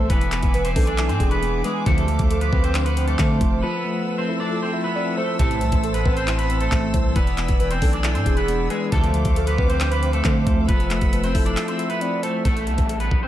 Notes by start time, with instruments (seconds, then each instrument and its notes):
Already playing: tine electric piano A2 E3 A3 C4 E4, string section E5
0.10 808-style bass E1, tine electric piano E3, clean electric guitar B3 B4, string section G#5 D6, kick, closed hi-hat
0.21 closed hi-hat
0.32 tine electric piano B3, clap, closed hi-hat
0.43 808-style bass E1, kick, closed hi-hat
0.54 808-style bass E1, soft synth lead B4, closed hi-hat
0.65 clean electric guitar C4 C5, closed hi-hat
0.76 808-style bass B1, tine electric piano D4, soft synth lead A4, kick, open hi-hat
0.87 clean electric guitar D4 D5, closed hi-hat
0.98 tine electric piano E4, clap, closed hi-hat
1.09 808-style bass G#2, clean electric guitar C4 C5, closed hi-hat
1.20 808-style bass E1, tine electric piano D4, soft synth lead G#4, kick, closed hi-hat
1.31 clean electric guitar B3 B4, closed hi-hat
1.42 tine electric piano B3, closed hi-hat
1.64 tine electric piano G#3, clean electric guitar G#3 G#4, soft synth lead B4, closed hi-hat
1.86 808-style bass D2, analog polysynth C3 D3 F3, tine electric piano D3, clean electric guitar A3 A4, string section C5 F5, kick, closed hi-hat
1.98 closed hi-hat
2.08 tine electric piano F3, closed hi-hat
2.19 808-style bass D2, kick, closed hi-hat
2.31 soft synth lead A4, closed hi-hat
2.41 clean electric guitar B3 B4, closed hi-hat
2.53 808-style bass D2, tine electric piano C4, soft synth lead B4, kick
2.64 clean electric guitar C4 C5, closed hi-hat
2.75 tine electric piano D4, clap, closed hi-hat
2.85 clean electric guitar B3 B4, closed hi-hat
2.97 tine electric piano C4, closed hi-hat
3.07 clean electric guitar A3 A4, closed hi-hat
3.19 808-style bass D3, tine electric piano A3, kick, clap, closed hi-hat
3.41 808-style bass F1, tine electric piano F3, soft synth lead C5, kick, closed hi-hat
3.63 tine electric piano F3, clean electric guitar B3 B4, string section A4 E5 E6
3.85 tine electric piano A3
4.07 soft synth lead B4
4.18 clean electric guitar C4 C5
4.29 tine electric piano E4, soft synth lead A4
4.40 clean electric guitar D4 D5
4.51 tine electric piano F4
4.62 clean electric guitar C4 C5
4.73 tine electric piano E4, soft synth lead E5
4.84 clean electric guitar B3 B4
4.95 tine electric piano C4, soft synth lead D5
5.17 tine electric piano A3, clean electric guitar A3 A4, soft synth lead C5
5.39 808-style bass A1, tine electric piano A2, analog polysynth A2 C3 E3, clean electric guitar A3 A4, string section C5 A5, kick, closed hi-hat
5.51 closed hi-hat
5.61 808-style bass C2, tine electric piano E3, closed hi-hat
5.72 808-style bass A1, kick, closed hi-hat
5.84 soft synth lead A4, closed hi-hat
5.94 clean electric guitar B3 B4, closed hi-hat
6.06 808-style bass A1, tine electric piano C4, soft synth lead B4, kick
6.17 clean electric guitar C4 C5, closed hi-hat
6.27 tine electric piano E4, clap, closed hi-hat
6.38 clean electric guitar B3 B4, closed hi-hat
6.50 tine electric piano C4, closed hi-hat
6.61 clean electric guitar A3 A4, closed hi-hat
6.72 808-style bass A1, tine electric piano A3, kick, clap, closed hi-hat
6.94 808-style bass C2, tine electric piano E3, soft synth lead C5, kick, closed hi-hat
7.16 808-style bass E1, tine electric piano E3, clean electric guitar B3 B4, string section D5 G#5, kick, closed hi-hat
7.27 closed hi-hat
7.38 tine electric piano B3, clap, closed hi-hat
7.48 808-style bass E1, kick, closed hi-hat
7.60 808-style bass E1, soft synth lead B4, closed hi-hat
7.71 clean electric guitar C4 C5, closed hi-hat
7.82 808-style bass B1, tine electric piano D4, soft synth lead A4, kick, open hi-hat
7.93 clean electric guitar D4 D5, closed hi-hat
8.04 tine electric piano E4, clap, closed hi-hat
8.15 808-style bass G#2, clean electric guitar C4 C5, closed hi-hat
8.26 808-style bass E1, tine electric piano D4, soft synth lead G#4, kick, closed hi-hat
8.37 clean electric guitar B3 B4, closed hi-hat
8.48 tine electric piano B3, closed hi-hat
8.70 tine electric piano G#3, clean electric guitar G#3 G#4, soft synth lead B4, closed hi-hat
8.92 808-style bass D2, analog polysynth C3 D3 F3, tine electric piano D3, clean electric guitar A3 A4, string section C5 F5 D6, kick, closed hi-hat
9.04 closed hi-hat
9.14 tine electric piano F3, closed hi-hat
9.25 808-style bass D2, kick, closed hi-hat
9.36 soft synth lead A4, closed hi-hat
9.47 clean electric guitar B3 B4, closed hi-hat
9.58 808-style bass D2, tine electric piano C4, soft synth lead B4, kick
9.70 clean electric guitar C4 C5, closed hi-hat
9.80 tine electric piano D4, clap, closed hi-hat
9.91 clean electric guitar B3 B4, closed hi-hat
10.03 tine electric piano C4, closed hi-hat
10.13 clean electric guitar A3 A4, closed hi-hat
10.24 808-style bass D3, tine electric piano A3, kick, clap, closed hi-hat
10.46 808-style bass D2, tine electric piano F3, soft synth lead C5, kick, closed hi-hat
10.68 808-style bass F1, tine electric piano F3, clean electric guitar B3 B4, string section A4 E5 E6, kick, closed hi-hat
10.80 closed hi-hat
10.90 tine electric piano A3, clap, closed hi-hat
11.01 808-style bass F1, kick, closed hi-hat
11.13 808-style bass F1, soft synth lead B4, closed hi-hat
11.24 clean electric guitar C4 C5, closed hi-hat
11.35 808-style bass F1, tine electric piano E4, soft synth lead A4, kick, open hi-hat
11.46 clean electric guitar D4 D5, closed hi-hat
11.57 tine electric piano F4, clap, closed hi-hat
11.68 clean electric guitar C4 C5, closed hi-hat
11.79 tine electric piano E4, soft synth lead E5, closed hi-hat
11.90 clean electric guitar B3 B4, closed hi-hat
12.01 tine electric piano C4, soft synth lead D5, closed hi-hat
12.23 tine electric piano A3, clean electric guitar A3 A4, soft synth lead C5, closed hi-hat
12.45 808-style bass A1, clean electric guitar A3 A4, kick, closed hi-hat, downlifter
12.57 closed hi-hat
12.67 808-style bass C2, closed hi-hat
12.78 808-style bass A1, kick, closed hi-hat
12.89 closed hi-hat
13.00 clean electric guitar B3 B4, closed hi-hat
13.11 808-style bass A1, kick
13.23 clean electric guitar C4 C5